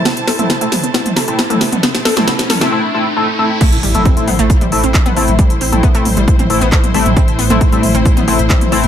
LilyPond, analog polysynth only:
\new Staff \with { instrumentName = "Analog polysynth" } { \time 4/4 \key a \minor \tempo 4 = 135 r8. <a c' e'>16 r16 <a c' e'>16 r4 r16 <a c' e'>16 r16 <a c' e'>16 r8 | r8. <a c' e'>16 r8. <a c' e'>16 <a c' e'>16 r16 <a c' e'>16 r16 <a c' e'>16 r16 <a c' e'>16 r16 | r8. <a c' e'>16 r16 <a c' e'>16 r4 <a c' e'>16 r8. <a c' e'>16 r16 | r8. <a c' e'>16 r16 <a c' e'>16 r4 <a c' e'>16 r8. <a c' e'>16 r16 |
r8. <a c' e'>16 r16 <a c' e'>16 r4 <a c' e'>16 r8. <a c' e'>16 r16 | }